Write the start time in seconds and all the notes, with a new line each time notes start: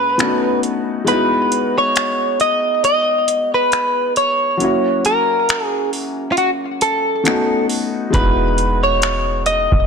Already playing: A#2 G#3 C#4 E4 F#4 B4
0.18 A3 B3 C#4 D4 F#4, finger snap, closed hi-hat
0.27 D#4
0.63 closed hi-hat
1.04 G#3 B3 D#4 B4, closed hi-hat
1.09 E4 F#4
1.52 closed hi-hat
1.78 C#5
1.96 finger snap, closed hi-hat
2.40 D#5, closed hi-hat
2.84 D#5, closed hi-hat
3.28 closed hi-hat
3.54 B4
3.72 finger snap, closed hi-hat
4.16 C#5, closed hi-hat
4.57 F#3 A#3 C#4, closed hi-hat
4.62 E4 F#4
5.05 A#4, closed hi-hat
5.49 finger snap, closed hi-hat
5.66 G#4
5.93 open hi-hat
6.32 F4
6.37 F#4, closed hi-hat
6.81 A4, closed hi-hat
7.24 A3 B3 C#4 D#4 F#4, finger snap, closed hi-hat
7.69 open hi-hat
8.10 E1 G#3 B3 D#4 B4, kick, closed hi-hat
8.15 E4 F#4
8.58 closed hi-hat
8.83 C#5
9.02 finger snap, closed hi-hat
9.46 D#5, closed hi-hat
9.72 E1, kick